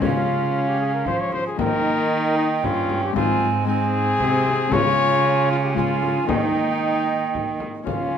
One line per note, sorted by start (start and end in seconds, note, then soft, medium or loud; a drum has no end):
0.00 1.09 C#3 medium
0.00 1.62 C#3 medium
0.00 1.60 G#3 soft
0.00 1.60 C#4 soft
0.00 1.39 C#4 medium
0.00 0.70 F4 medium
0.00 1.61 F4 soft
0.00 1.31 F5 medium
0.00 frame drum medium
0.68 0.80 G4 medium
0.80 0.93 G#4 medium
0.94 1.07 A#4 medium
1.06 1.62 F3 soft
1.06 1.40 F3 medium
1.06 1.22 C5 medium
1.06 frame drum medium
1.20 1.33 C#5 medium
1.32 1.46 C5 medium
1.32 frame drum soft
1.47 1.59 G#4 medium
1.57 2.65 D#3 medium
1.57 3.18 D#3 medium
1.57 3.17 A#3 medium
1.57 3.13 D#4 medium
1.57 2.65 D#4 medium
1.57 2.37 A#4 loud
1.57 3.12 G5 medium
1.57 frame drum medium
2.37 2.49 D#4 medium
2.64 3.15 G2 medium
2.64 3.18 G2 medium
2.64 3.15 C#4 medium
2.64 3.02 F4 medium
2.64 frame drum medium
2.90 frame drum soft
3.04 3.15 G4 medium
3.12 4.74 G#2 medium
3.12 4.17 G#2 medium
3.12 3.63 G#3 medium
3.12 3.64 C4 medium
3.12 3.67 C4 medium
3.12 3.65 D#4 medium
3.12 3.67 G#5 medium
3.16 3.49 F4 loud
3.16 frame drum medium
3.64 4.67 G#3 medium
3.64 4.73 C4 medium
3.64 4.73 D#4 medium
3.64 4.74 G#4 loud
3.64 4.70 G#5 medium
3.68 4.75 C4 medium
4.20 4.71 C3 medium
4.20 4.74 C3 medium
4.20 frame drum medium
4.46 frame drum medium
4.68 6.25 C#3 medium
4.68 5.72 G#3 medium
4.68 5.74 C#4 medium
4.68 5.75 F4 medium
4.68 frame drum medium
4.72 6.31 C#3 medium
4.72 5.76 F4 medium
4.72 5.50 C#5 loud
4.72 5.74 G#5 medium
4.72 4.77 A5 medium
5.51 5.57 F4 medium
5.64 5.75 G4 medium
5.73 6.29 G#3 soft
5.73 6.30 C#4 soft
5.73 6.27 F4 medium
5.73 6.30 F4 soft
5.73 6.30 F4 medium
5.73 frame drum medium
5.77 6.30 G#5 medium
6.03 frame drum soft
6.27 7.89 D#3 soft
6.27 7.64 D#3 medium
6.27 7.88 A#3 soft
6.27 7.88 D#4 soft
6.27 6.38 D#4 medium
6.27 7.67 D#4 medium
6.27 7.60 G5 medium
6.27 frame drum medium
6.36 6.45 C#4 medium
6.44 7.34 D#4 medium
7.35 frame drum soft
7.60 frame drum soft
7.83 8.18 C#3 soft
7.83 8.18 C#3 medium
7.83 8.18 C#4 soft
7.83 8.18 C#4 medium
7.83 8.18 F4 soft
7.83 8.18 F4 medium
7.83 frame drum medium
7.88 8.18 F5 medium